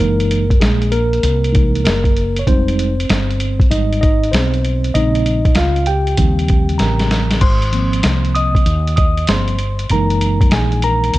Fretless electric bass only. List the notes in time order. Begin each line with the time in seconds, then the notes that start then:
0.00 F#1
0.61 A#1
1.23 C2
1.84 F#1
2.47 F1
3.10 G1
3.71 G#1
4.33 B1
4.95 A#1
5.57 C#2
6.19 D#2
6.80 A1
7.42 G#1
8.04 C2
8.66 D#2
9.28 G1
9.90 F#1
10.52 A#1
11.14 C2